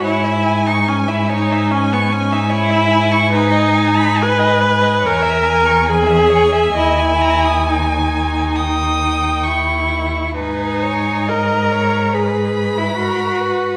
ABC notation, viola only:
X:1
M:4/4
L:1/16
Q:1/4=71
K:G#m
V:1 name="Viola"
E3 D C E D2 C B, C D E4 | D4 B4 A4 G4 | E4 D8 E4 | D4 A4 G3 E F4 |]